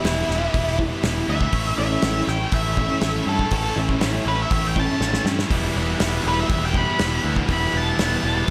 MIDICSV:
0, 0, Header, 1, 7, 480
1, 0, Start_track
1, 0, Tempo, 496278
1, 1483, Time_signature, 4, 2, 24, 8
1, 8225, End_track
2, 0, Start_track
2, 0, Title_t, "Lead electric guitar"
2, 0, Program_c, 0, 29
2, 0, Note_on_c, 0, 64, 82
2, 746, Note_off_c, 0, 64, 0
2, 1255, Note_on_c, 0, 76, 102
2, 1714, Note_off_c, 0, 76, 0
2, 1730, Note_on_c, 0, 76, 78
2, 2191, Note_off_c, 0, 76, 0
2, 2211, Note_on_c, 0, 79, 78
2, 2439, Note_off_c, 0, 79, 0
2, 2455, Note_on_c, 0, 76, 81
2, 3147, Note_off_c, 0, 76, 0
2, 3181, Note_on_c, 0, 69, 79
2, 3404, Note_off_c, 0, 69, 0
2, 3415, Note_on_c, 0, 69, 111
2, 3641, Note_off_c, 0, 69, 0
2, 4140, Note_on_c, 0, 71, 92
2, 4247, Note_off_c, 0, 71, 0
2, 4278, Note_on_c, 0, 76, 90
2, 4493, Note_off_c, 0, 76, 0
2, 4520, Note_on_c, 0, 79, 97
2, 4637, Note_off_c, 0, 79, 0
2, 4637, Note_on_c, 0, 81, 97
2, 5086, Note_off_c, 0, 81, 0
2, 6074, Note_on_c, 0, 71, 102
2, 6175, Note_off_c, 0, 71, 0
2, 6188, Note_on_c, 0, 76, 84
2, 6409, Note_off_c, 0, 76, 0
2, 6433, Note_on_c, 0, 79, 86
2, 6535, Note_off_c, 0, 79, 0
2, 6551, Note_on_c, 0, 83, 100
2, 7004, Note_off_c, 0, 83, 0
2, 7279, Note_on_c, 0, 83, 110
2, 7495, Note_off_c, 0, 83, 0
2, 7517, Note_on_c, 0, 81, 84
2, 8200, Note_off_c, 0, 81, 0
2, 8225, End_track
3, 0, Start_track
3, 0, Title_t, "Distorted electric guitar"
3, 0, Program_c, 1, 30
3, 37, Note_on_c, 1, 52, 71
3, 40, Note_on_c, 1, 55, 67
3, 50, Note_on_c, 1, 59, 75
3, 53, Note_on_c, 1, 64, 69
3, 269, Note_off_c, 1, 59, 0
3, 272, Note_off_c, 1, 64, 0
3, 276, Note_on_c, 1, 64, 67
3, 280, Note_on_c, 1, 59, 62
3, 285, Note_off_c, 1, 55, 0
3, 297, Note_on_c, 1, 55, 55
3, 499, Note_off_c, 1, 55, 0
3, 501, Note_off_c, 1, 52, 0
3, 505, Note_off_c, 1, 59, 0
3, 505, Note_on_c, 1, 52, 94
3, 511, Note_on_c, 1, 55, 87
3, 517, Note_on_c, 1, 59, 97
3, 518, Note_off_c, 1, 64, 0
3, 522, Note_on_c, 1, 64, 86
3, 987, Note_off_c, 1, 55, 0
3, 989, Note_off_c, 1, 52, 0
3, 991, Note_off_c, 1, 59, 0
3, 993, Note_on_c, 1, 52, 78
3, 999, Note_on_c, 1, 55, 82
3, 1003, Note_on_c, 1, 59, 87
3, 1009, Note_off_c, 1, 64, 0
3, 1013, Note_on_c, 1, 64, 90
3, 1225, Note_off_c, 1, 64, 0
3, 1229, Note_on_c, 1, 64, 75
3, 1231, Note_off_c, 1, 59, 0
3, 1235, Note_off_c, 1, 55, 0
3, 1242, Note_on_c, 1, 59, 65
3, 1247, Note_on_c, 1, 55, 54
3, 1468, Note_off_c, 1, 59, 0
3, 1469, Note_on_c, 1, 45, 101
3, 1470, Note_off_c, 1, 52, 0
3, 1470, Note_off_c, 1, 55, 0
3, 1474, Note_on_c, 1, 52, 105
3, 1477, Note_on_c, 1, 57, 99
3, 1480, Note_off_c, 1, 64, 0
3, 1480, Note_on_c, 1, 61, 118
3, 1484, Note_on_c, 1, 64, 110
3, 1701, Note_off_c, 1, 64, 0
3, 1705, Note_on_c, 1, 64, 73
3, 1713, Note_off_c, 1, 61, 0
3, 1717, Note_on_c, 1, 61, 64
3, 1719, Note_off_c, 1, 57, 0
3, 1723, Note_on_c, 1, 57, 63
3, 1944, Note_off_c, 1, 52, 0
3, 1948, Note_on_c, 1, 52, 64
3, 1953, Note_off_c, 1, 57, 0
3, 1957, Note_off_c, 1, 61, 0
3, 1957, Note_on_c, 1, 57, 62
3, 1961, Note_on_c, 1, 61, 75
3, 1964, Note_off_c, 1, 64, 0
3, 1967, Note_on_c, 1, 64, 73
3, 2188, Note_off_c, 1, 64, 0
3, 2192, Note_on_c, 1, 64, 66
3, 2197, Note_off_c, 1, 61, 0
3, 2200, Note_on_c, 1, 61, 65
3, 2204, Note_off_c, 1, 57, 0
3, 2208, Note_on_c, 1, 57, 50
3, 2421, Note_off_c, 1, 45, 0
3, 2425, Note_off_c, 1, 57, 0
3, 2425, Note_on_c, 1, 45, 80
3, 2428, Note_off_c, 1, 52, 0
3, 2430, Note_off_c, 1, 61, 0
3, 2431, Note_on_c, 1, 52, 86
3, 2437, Note_on_c, 1, 57, 91
3, 2442, Note_off_c, 1, 64, 0
3, 2442, Note_on_c, 1, 61, 84
3, 2446, Note_on_c, 1, 64, 89
3, 2904, Note_off_c, 1, 52, 0
3, 2906, Note_off_c, 1, 57, 0
3, 2907, Note_on_c, 1, 52, 88
3, 2909, Note_off_c, 1, 61, 0
3, 2918, Note_on_c, 1, 57, 79
3, 2920, Note_on_c, 1, 61, 88
3, 2929, Note_off_c, 1, 64, 0
3, 2933, Note_on_c, 1, 64, 91
3, 3137, Note_off_c, 1, 64, 0
3, 3140, Note_off_c, 1, 61, 0
3, 3141, Note_on_c, 1, 64, 71
3, 3152, Note_off_c, 1, 57, 0
3, 3152, Note_on_c, 1, 61, 70
3, 3153, Note_off_c, 1, 45, 0
3, 3164, Note_on_c, 1, 57, 62
3, 3388, Note_off_c, 1, 61, 0
3, 3388, Note_on_c, 1, 45, 91
3, 3389, Note_off_c, 1, 52, 0
3, 3389, Note_off_c, 1, 57, 0
3, 3393, Note_on_c, 1, 52, 101
3, 3400, Note_on_c, 1, 57, 108
3, 3400, Note_on_c, 1, 61, 109
3, 3401, Note_off_c, 1, 64, 0
3, 3405, Note_on_c, 1, 64, 108
3, 3619, Note_off_c, 1, 64, 0
3, 3620, Note_off_c, 1, 61, 0
3, 3622, Note_on_c, 1, 64, 63
3, 3632, Note_off_c, 1, 57, 0
3, 3632, Note_on_c, 1, 61, 54
3, 3643, Note_on_c, 1, 57, 57
3, 3857, Note_off_c, 1, 57, 0
3, 3862, Note_off_c, 1, 52, 0
3, 3866, Note_on_c, 1, 52, 60
3, 3867, Note_off_c, 1, 61, 0
3, 3868, Note_on_c, 1, 57, 66
3, 3874, Note_off_c, 1, 45, 0
3, 3878, Note_on_c, 1, 61, 64
3, 3880, Note_off_c, 1, 64, 0
3, 3884, Note_on_c, 1, 64, 78
3, 4103, Note_off_c, 1, 64, 0
3, 4107, Note_on_c, 1, 64, 65
3, 4110, Note_off_c, 1, 61, 0
3, 4116, Note_off_c, 1, 57, 0
3, 4122, Note_on_c, 1, 61, 59
3, 4128, Note_on_c, 1, 57, 57
3, 4351, Note_off_c, 1, 52, 0
3, 4352, Note_off_c, 1, 57, 0
3, 4352, Note_off_c, 1, 61, 0
3, 4353, Note_on_c, 1, 45, 80
3, 4355, Note_on_c, 1, 52, 79
3, 4363, Note_on_c, 1, 57, 85
3, 4364, Note_on_c, 1, 61, 91
3, 4369, Note_off_c, 1, 64, 0
3, 4372, Note_on_c, 1, 64, 101
3, 4838, Note_off_c, 1, 57, 0
3, 4839, Note_off_c, 1, 52, 0
3, 4843, Note_on_c, 1, 52, 73
3, 4845, Note_off_c, 1, 61, 0
3, 4850, Note_on_c, 1, 57, 70
3, 4854, Note_off_c, 1, 64, 0
3, 4857, Note_on_c, 1, 61, 82
3, 4858, Note_on_c, 1, 64, 81
3, 5077, Note_off_c, 1, 45, 0
3, 5078, Note_off_c, 1, 64, 0
3, 5082, Note_on_c, 1, 64, 73
3, 5084, Note_off_c, 1, 61, 0
3, 5090, Note_off_c, 1, 57, 0
3, 5096, Note_on_c, 1, 61, 65
3, 5102, Note_on_c, 1, 57, 59
3, 5312, Note_off_c, 1, 52, 0
3, 5315, Note_off_c, 1, 61, 0
3, 5316, Note_on_c, 1, 52, 97
3, 5318, Note_off_c, 1, 57, 0
3, 5326, Note_on_c, 1, 55, 107
3, 5332, Note_off_c, 1, 64, 0
3, 5334, Note_on_c, 1, 59, 96
3, 5336, Note_on_c, 1, 64, 116
3, 5556, Note_off_c, 1, 64, 0
3, 5560, Note_on_c, 1, 64, 70
3, 5567, Note_off_c, 1, 59, 0
3, 5571, Note_on_c, 1, 59, 57
3, 5576, Note_off_c, 1, 55, 0
3, 5580, Note_on_c, 1, 55, 55
3, 5797, Note_off_c, 1, 52, 0
3, 5800, Note_off_c, 1, 55, 0
3, 5801, Note_on_c, 1, 52, 68
3, 5804, Note_on_c, 1, 55, 68
3, 5808, Note_off_c, 1, 59, 0
3, 5812, Note_on_c, 1, 59, 75
3, 5814, Note_off_c, 1, 64, 0
3, 5818, Note_on_c, 1, 64, 81
3, 6034, Note_off_c, 1, 64, 0
3, 6037, Note_on_c, 1, 64, 68
3, 6040, Note_off_c, 1, 59, 0
3, 6044, Note_on_c, 1, 59, 62
3, 6052, Note_off_c, 1, 55, 0
3, 6056, Note_on_c, 1, 55, 51
3, 6279, Note_off_c, 1, 52, 0
3, 6280, Note_off_c, 1, 55, 0
3, 6282, Note_off_c, 1, 59, 0
3, 6283, Note_on_c, 1, 52, 88
3, 6292, Note_on_c, 1, 55, 84
3, 6294, Note_on_c, 1, 59, 83
3, 6296, Note_off_c, 1, 64, 0
3, 6300, Note_on_c, 1, 64, 98
3, 6751, Note_off_c, 1, 52, 0
3, 6753, Note_off_c, 1, 55, 0
3, 6755, Note_on_c, 1, 52, 80
3, 6760, Note_off_c, 1, 59, 0
3, 6765, Note_on_c, 1, 55, 83
3, 6772, Note_on_c, 1, 59, 88
3, 6775, Note_off_c, 1, 64, 0
3, 6778, Note_on_c, 1, 64, 83
3, 7001, Note_off_c, 1, 59, 0
3, 7001, Note_off_c, 1, 64, 0
3, 7005, Note_on_c, 1, 64, 75
3, 7010, Note_off_c, 1, 55, 0
3, 7013, Note_on_c, 1, 59, 62
3, 7022, Note_on_c, 1, 55, 58
3, 7239, Note_off_c, 1, 55, 0
3, 7241, Note_off_c, 1, 52, 0
3, 7245, Note_on_c, 1, 52, 92
3, 7248, Note_off_c, 1, 59, 0
3, 7250, Note_on_c, 1, 55, 101
3, 7259, Note_off_c, 1, 64, 0
3, 7259, Note_on_c, 1, 59, 104
3, 7263, Note_on_c, 1, 64, 123
3, 7479, Note_off_c, 1, 64, 0
3, 7480, Note_off_c, 1, 59, 0
3, 7483, Note_on_c, 1, 64, 69
3, 7486, Note_off_c, 1, 55, 0
3, 7492, Note_on_c, 1, 59, 62
3, 7497, Note_on_c, 1, 55, 56
3, 7723, Note_off_c, 1, 55, 0
3, 7726, Note_off_c, 1, 52, 0
3, 7730, Note_off_c, 1, 59, 0
3, 7730, Note_on_c, 1, 52, 64
3, 7734, Note_on_c, 1, 55, 67
3, 7741, Note_on_c, 1, 59, 64
3, 7745, Note_off_c, 1, 64, 0
3, 7749, Note_on_c, 1, 64, 70
3, 7961, Note_off_c, 1, 64, 0
3, 7963, Note_off_c, 1, 59, 0
3, 7965, Note_on_c, 1, 64, 67
3, 7970, Note_off_c, 1, 55, 0
3, 7975, Note_on_c, 1, 59, 60
3, 7982, Note_on_c, 1, 55, 51
3, 8194, Note_off_c, 1, 55, 0
3, 8196, Note_off_c, 1, 52, 0
3, 8208, Note_off_c, 1, 59, 0
3, 8219, Note_off_c, 1, 64, 0
3, 8225, End_track
4, 0, Start_track
4, 0, Title_t, "Clean electric guitar"
4, 0, Program_c, 2, 27
4, 756, Note_on_c, 2, 64, 108
4, 760, Note_on_c, 2, 59, 91
4, 764, Note_on_c, 2, 55, 82
4, 765, Note_on_c, 2, 52, 71
4, 987, Note_off_c, 2, 52, 0
4, 990, Note_off_c, 2, 55, 0
4, 995, Note_off_c, 2, 59, 0
4, 996, Note_off_c, 2, 64, 0
4, 1728, Note_on_c, 2, 52, 75
4, 1948, Note_off_c, 2, 52, 0
4, 2681, Note_on_c, 2, 64, 104
4, 2687, Note_on_c, 2, 61, 88
4, 2691, Note_on_c, 2, 57, 83
4, 2693, Note_on_c, 2, 52, 79
4, 2905, Note_off_c, 2, 52, 0
4, 2911, Note_off_c, 2, 57, 0
4, 2916, Note_off_c, 2, 61, 0
4, 2916, Note_off_c, 2, 64, 0
4, 3649, Note_on_c, 2, 52, 73
4, 3864, Note_off_c, 2, 52, 0
4, 4598, Note_on_c, 2, 64, 90
4, 4602, Note_on_c, 2, 61, 93
4, 4605, Note_on_c, 2, 57, 76
4, 4609, Note_on_c, 2, 52, 84
4, 4832, Note_off_c, 2, 52, 0
4, 4835, Note_off_c, 2, 57, 0
4, 4837, Note_off_c, 2, 61, 0
4, 4840, Note_off_c, 2, 64, 0
4, 8225, End_track
5, 0, Start_track
5, 0, Title_t, "Distorted electric guitar"
5, 0, Program_c, 3, 30
5, 6062, Note_on_c, 3, 52, 72
5, 6269, Note_off_c, 3, 52, 0
5, 6512, Note_on_c, 3, 64, 73
5, 6533, Note_on_c, 3, 59, 70
5, 6546, Note_on_c, 3, 55, 51
5, 6758, Note_off_c, 3, 55, 0
5, 6767, Note_off_c, 3, 59, 0
5, 6787, Note_off_c, 3, 64, 0
5, 7981, Note_on_c, 3, 52, 78
5, 8180, Note_off_c, 3, 52, 0
5, 8184, Note_on_c, 3, 52, 79
5, 8225, Note_off_c, 3, 52, 0
5, 8225, End_track
6, 0, Start_track
6, 0, Title_t, "Picked electric bass"
6, 0, Program_c, 4, 34
6, 42, Note_on_c, 4, 28, 87
6, 213, Note_off_c, 4, 28, 0
6, 280, Note_on_c, 4, 28, 84
6, 452, Note_off_c, 4, 28, 0
6, 525, Note_on_c, 4, 28, 94
6, 864, Note_off_c, 4, 28, 0
6, 1000, Note_on_c, 4, 28, 84
6, 1171, Note_off_c, 4, 28, 0
6, 1241, Note_on_c, 4, 38, 80
6, 1412, Note_off_c, 4, 38, 0
6, 1477, Note_on_c, 4, 33, 89
6, 1649, Note_off_c, 4, 33, 0
6, 1722, Note_on_c, 4, 33, 88
6, 1892, Note_off_c, 4, 33, 0
6, 1963, Note_on_c, 4, 33, 85
6, 2132, Note_off_c, 4, 33, 0
6, 2202, Note_on_c, 4, 33, 82
6, 2372, Note_off_c, 4, 33, 0
6, 2439, Note_on_c, 4, 33, 91
6, 2780, Note_off_c, 4, 33, 0
6, 2916, Note_on_c, 4, 33, 88
6, 3088, Note_off_c, 4, 33, 0
6, 3156, Note_on_c, 4, 43, 77
6, 3328, Note_off_c, 4, 43, 0
6, 3401, Note_on_c, 4, 33, 92
6, 3571, Note_off_c, 4, 33, 0
6, 3639, Note_on_c, 4, 33, 80
6, 3810, Note_off_c, 4, 33, 0
6, 3872, Note_on_c, 4, 33, 91
6, 4046, Note_off_c, 4, 33, 0
6, 4117, Note_on_c, 4, 33, 91
6, 4289, Note_off_c, 4, 33, 0
6, 4360, Note_on_c, 4, 33, 97
6, 4701, Note_off_c, 4, 33, 0
6, 4839, Note_on_c, 4, 33, 84
6, 5010, Note_off_c, 4, 33, 0
6, 5075, Note_on_c, 4, 43, 93
6, 5248, Note_off_c, 4, 43, 0
6, 5325, Note_on_c, 4, 28, 94
6, 5495, Note_off_c, 4, 28, 0
6, 5572, Note_on_c, 4, 28, 94
6, 5739, Note_off_c, 4, 28, 0
6, 5809, Note_on_c, 4, 28, 94
6, 5977, Note_off_c, 4, 28, 0
6, 6043, Note_on_c, 4, 28, 83
6, 6213, Note_off_c, 4, 28, 0
6, 6282, Note_on_c, 4, 28, 86
6, 6623, Note_off_c, 4, 28, 0
6, 6767, Note_on_c, 4, 28, 92
6, 6936, Note_off_c, 4, 28, 0
6, 7006, Note_on_c, 4, 38, 90
6, 7176, Note_off_c, 4, 38, 0
6, 7241, Note_on_c, 4, 28, 88
6, 7412, Note_off_c, 4, 28, 0
6, 7482, Note_on_c, 4, 28, 96
6, 7653, Note_off_c, 4, 28, 0
6, 7716, Note_on_c, 4, 28, 86
6, 7889, Note_off_c, 4, 28, 0
6, 7964, Note_on_c, 4, 28, 87
6, 8134, Note_off_c, 4, 28, 0
6, 8225, End_track
7, 0, Start_track
7, 0, Title_t, "Drums"
7, 44, Note_on_c, 9, 46, 50
7, 49, Note_on_c, 9, 38, 100
7, 141, Note_off_c, 9, 46, 0
7, 146, Note_off_c, 9, 38, 0
7, 296, Note_on_c, 9, 38, 31
7, 393, Note_off_c, 9, 38, 0
7, 524, Note_on_c, 9, 36, 97
7, 527, Note_on_c, 9, 46, 56
7, 621, Note_off_c, 9, 36, 0
7, 624, Note_off_c, 9, 46, 0
7, 763, Note_on_c, 9, 36, 82
7, 860, Note_off_c, 9, 36, 0
7, 998, Note_on_c, 9, 46, 56
7, 1003, Note_on_c, 9, 38, 98
7, 1095, Note_off_c, 9, 46, 0
7, 1100, Note_off_c, 9, 38, 0
7, 1360, Note_on_c, 9, 36, 85
7, 1457, Note_off_c, 9, 36, 0
7, 1475, Note_on_c, 9, 46, 60
7, 1480, Note_on_c, 9, 36, 96
7, 1572, Note_off_c, 9, 46, 0
7, 1577, Note_off_c, 9, 36, 0
7, 1954, Note_on_c, 9, 46, 51
7, 1959, Note_on_c, 9, 38, 110
7, 2051, Note_off_c, 9, 46, 0
7, 2056, Note_off_c, 9, 38, 0
7, 2202, Note_on_c, 9, 38, 35
7, 2299, Note_off_c, 9, 38, 0
7, 2436, Note_on_c, 9, 46, 62
7, 2441, Note_on_c, 9, 36, 106
7, 2532, Note_off_c, 9, 46, 0
7, 2538, Note_off_c, 9, 36, 0
7, 2681, Note_on_c, 9, 36, 91
7, 2778, Note_off_c, 9, 36, 0
7, 2912, Note_on_c, 9, 46, 50
7, 2917, Note_on_c, 9, 38, 109
7, 3009, Note_off_c, 9, 46, 0
7, 3014, Note_off_c, 9, 38, 0
7, 3281, Note_on_c, 9, 36, 75
7, 3378, Note_off_c, 9, 36, 0
7, 3393, Note_on_c, 9, 46, 55
7, 3401, Note_on_c, 9, 36, 97
7, 3489, Note_off_c, 9, 46, 0
7, 3497, Note_off_c, 9, 36, 0
7, 3761, Note_on_c, 9, 36, 79
7, 3858, Note_off_c, 9, 36, 0
7, 3877, Note_on_c, 9, 46, 54
7, 3882, Note_on_c, 9, 38, 101
7, 3974, Note_off_c, 9, 46, 0
7, 3979, Note_off_c, 9, 38, 0
7, 4359, Note_on_c, 9, 46, 55
7, 4363, Note_on_c, 9, 36, 111
7, 4456, Note_off_c, 9, 46, 0
7, 4459, Note_off_c, 9, 36, 0
7, 4604, Note_on_c, 9, 36, 84
7, 4701, Note_off_c, 9, 36, 0
7, 4843, Note_on_c, 9, 38, 53
7, 4940, Note_off_c, 9, 38, 0
7, 4967, Note_on_c, 9, 38, 56
7, 5064, Note_off_c, 9, 38, 0
7, 5086, Note_on_c, 9, 38, 83
7, 5182, Note_off_c, 9, 38, 0
7, 5211, Note_on_c, 9, 38, 78
7, 5308, Note_off_c, 9, 38, 0
7, 5325, Note_on_c, 9, 36, 108
7, 5327, Note_on_c, 9, 46, 66
7, 5422, Note_off_c, 9, 36, 0
7, 5424, Note_off_c, 9, 46, 0
7, 5801, Note_on_c, 9, 46, 64
7, 5806, Note_on_c, 9, 38, 104
7, 5898, Note_off_c, 9, 46, 0
7, 5902, Note_off_c, 9, 38, 0
7, 6282, Note_on_c, 9, 46, 53
7, 6284, Note_on_c, 9, 36, 114
7, 6378, Note_off_c, 9, 46, 0
7, 6380, Note_off_c, 9, 36, 0
7, 6523, Note_on_c, 9, 36, 82
7, 6620, Note_off_c, 9, 36, 0
7, 6761, Note_on_c, 9, 46, 53
7, 6766, Note_on_c, 9, 38, 105
7, 6858, Note_off_c, 9, 46, 0
7, 6862, Note_off_c, 9, 38, 0
7, 7122, Note_on_c, 9, 36, 77
7, 7219, Note_off_c, 9, 36, 0
7, 7239, Note_on_c, 9, 46, 57
7, 7243, Note_on_c, 9, 36, 104
7, 7336, Note_off_c, 9, 46, 0
7, 7339, Note_off_c, 9, 36, 0
7, 7726, Note_on_c, 9, 46, 54
7, 7731, Note_on_c, 9, 38, 96
7, 7823, Note_off_c, 9, 46, 0
7, 7827, Note_off_c, 9, 38, 0
7, 8225, End_track
0, 0, End_of_file